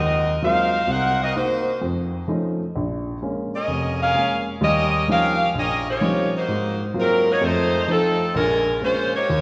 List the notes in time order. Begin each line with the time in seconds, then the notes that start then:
Already playing: D#2 C4 F#4
0.00 A#4 D#5
0.42 F#3 G#3 A#3 C4 D#4 F4 A#4 C5 F5
0.87 C2 D#4 A#4 C5 F#5
1.23 C4 F#4 A#4 D#5
1.36 A#3 C4 D#4 F#4 C5
1.81 F2
2.28 F3 A3 C#4 D#4
2.76 A#1
3.22 G#3 A#3 C#4
3.55 C#4 G#4 A#4 D#5
3.68 F1
4.01 C#4 G#4 A#4 F5
4.15 G#3 A#3 C#4
4.61 D#2 G3 C#4 G4 A#4 D#5
5.08 F3 G3 C4 C#4 D#4 G4 F5
5.12 C#4 A#4
5.54 A#1
5.59 C#4 G4 A#4 D#5
5.90 A#3 F4 G4 C#5
6.01 F3 G3 C4 C#4 D#4
6.38 A#3 D#4 F#4 C5
6.48 G#2
6.94 F#3 G#3 A#3 C4 F4
6.99 F#3 C4 D#4 A#4
7.31 A#3 D#4 F#4 C#5
7.41 F2 A3 D#4 C5
7.45 A3 F4
7.88 F3 A3 C4 D#4 A4
8.35 A#1 G#3 C#4 F4 A#4
8.81 G#3 A#3 C#4 F4 C5
9.16 A#3 D#4 G4 C#5
9.30 D#2